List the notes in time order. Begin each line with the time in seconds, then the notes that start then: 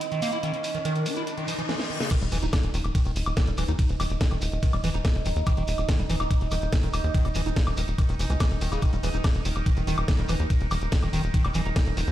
Already playing: D#4 D#5, riser
0.01 closed hi-hat, shekere
0.12 D#3, closed hi-hat, shekere
0.22 A#3, open hi-hat, shekere
0.33 E4, closed hi-hat, shekere
0.43 D#3, closed hi-hat, shekere
0.54 closed hi-hat, shekere
0.64 open hi-hat, shekere
0.75 D#3, closed hi-hat, shekere
0.85 D#3, closed hi-hat, shekere
0.96 closed hi-hat, shekere
1.06 D#4, open hi-hat, shekere
1.17 E4, closed hi-hat, shekere
1.27 closed hi-hat, reverse cymbal, shekere
1.38 D#3, closed hi-hat, shekere
1.48 E3, open hi-hat, shekere
1.59 E3, closed hi-hat, shekere
1.69 E3, snare
1.80 snare
1.90 D#3
2.00 C#3, snare
2.11 D#3 D#4 D#5, kick, closed hi-hat, crash, ride, impact, high woodblock, shekere
2.21 D#1 G3, closed hi-hat, shekere
2.32 D#1 E3, open hi-hat, shekere
2.42 D#1 D#4, closed hi-hat, shekere
2.53 kick, snare, closed hi-hat, ride, high woodblock, shekere
2.63 D#1, closed hi-hat, shekere
2.74 D#1 D#3, open hi-hat, shekere
2.84 D#1, closed hi-hat, high woodblock, shekere
2.95 D#3, kick, closed hi-hat, ride, shekere
3.05 D#1 D#3, closed hi-hat, shekere
3.16 D#1, open hi-hat, shekere
3.26 D#1, closed hi-hat, high woodblock, shekere
3.37 D#3, kick, snare, closed hi-hat, ride, shekere
3.47 D#1 G3, closed hi-hat, shekere
3.57 D#1 E3, open hi-hat, high woodblock, shekere
3.68 D#2 D#4, closed hi-hat, shekere
3.79 kick, closed hi-hat, ride, shekere
3.89 D#1, closed hi-hat, shekere
4.00 D#1 D#3, open hi-hat, high woodblock, shekere
4.10 D#1, closed hi-hat, shekere
4.21 D#3, kick, snare, closed hi-hat, ride, shekere
4.31 D#1 D#3, closed hi-hat, high woodblock, shekere
4.41 D#1, open hi-hat, shekere
4.52 D#1, closed hi-hat, shekere
4.63 D#3, kick, closed hi-hat, ride, shekere
4.73 D#1 G3, closed hi-hat, high woodblock, shekere
4.84 D#1 E3, open hi-hat, shekere
4.94 D#1 D#4, closed hi-hat, shekere
5.05 kick, snare, closed hi-hat, ride, high woodblock, shekere
5.15 D#1, closed hi-hat, shekere
5.25 D#1 D#3, open hi-hat, shekere
5.36 D#2, closed hi-hat, shekere
5.46 D#3, kick, closed hi-hat, ride, high woodblock, shekere
5.57 D#1 D#3, closed hi-hat, shekere
5.68 D#1, open hi-hat, shekere
5.78 D#1, closed hi-hat, high woodblock, shekere
5.88 D#3, kick, snare, closed hi-hat, ride, shekere
5.99 D#1 G3, closed hi-hat, shekere
6.10 D#1 E3, open hi-hat, shekere
6.20 D#1 D#4, closed hi-hat, high woodblock, shekere
6.31 kick, closed hi-hat, ride, shekere
6.41 D#1, closed hi-hat, shekere
6.51 D#1 D#3, open hi-hat, high woodblock, shekere
6.62 D#1, closed hi-hat, shekere
6.73 D#3, kick, snare, closed hi-hat, ride, shekere
6.83 D#1 D#3, closed hi-hat, shekere
6.93 D#1, open hi-hat, high woodblock, shekere
7.04 D#2, closed hi-hat, shekere
7.14 D#3, kick, closed hi-hat, ride, shekere
7.25 D#1 G3, closed hi-hat, high woodblock, shekere
7.35 D#1 E3, open hi-hat, shekere
7.46 D#1 D#4, closed hi-hat, shekere
7.56 kick, snare, closed hi-hat, ride, shekere
7.67 D#1, closed hi-hat, high woodblock, shekere
7.77 D#1 D#3, open hi-hat, shekere
7.88 D#1, closed hi-hat, shekere
7.98 D#3, kick, closed hi-hat, ride, high woodblock, shekere
8.09 D#1 D#3, closed hi-hat, shekere
8.19 E1 E3, open hi-hat, shekere
8.30 C#2 E3, closed hi-hat, shekere
8.40 E3, kick, snare, closed hi-hat, ride, high woodblock, shekere
8.51 D#1, closed hi-hat, shekere
8.61 D#1 D#3, open hi-hat, shekere
8.72 D#1 C#3, closed hi-hat, high woodblock, shekere
8.81 D#3 A#4, kick, closed hi-hat, ride, high woodblock, shekere
8.92 D#1 G3, closed hi-hat, shekere
9.03 D#1 E3, open hi-hat, shekere
9.14 D#1 D#4, closed hi-hat, shekere
9.24 kick, snare, closed hi-hat, ride, high woodblock, shekere
9.35 D#1, closed hi-hat, shekere
9.45 D#1 D#3, open hi-hat, shekere
9.56 D#1, closed hi-hat, high woodblock, shekere
9.66 D#3, kick, closed hi-hat, ride, shekere
9.76 D#1 D#3, closed hi-hat, shekere
9.87 D#1 D#3, open hi-hat, shekere
9.97 D#1, closed hi-hat, high woodblock, shekere
10.08 D#3, kick, snare, closed hi-hat, ride, shekere
10.18 D#1 G3, closed hi-hat, shekere
10.28 D#1 E3, open hi-hat, high woodblock, shekere
10.40 D#2 D#4, closed hi-hat, shekere
10.50 kick, closed hi-hat, ride, shekere
10.60 D#1, closed hi-hat, shekere
10.71 D#1 D#3, open hi-hat, high woodblock, shekere
10.82 D#1, closed hi-hat, shekere
10.92 D#3, kick, snare, closed hi-hat, ride, shekere
11.02 D#1 D#3, closed hi-hat, high woodblock, shekere
11.13 D#1 D#3, open hi-hat, shekere
11.24 D#1, closed hi-hat, shekere
11.34 D#3, kick, closed hi-hat, ride, shekere
11.45 D#1 G3, closed hi-hat, high woodblock, shekere
11.54 D#1 E3, open hi-hat, shekere
11.66 D#1 D#4, closed hi-hat, shekere
11.76 kick, snare, closed hi-hat, ride, high woodblock, shekere
11.87 D#1, closed hi-hat, shekere
11.97 D#1 D#3, open hi-hat, shekere
12.07 D#2, closed hi-hat, shekere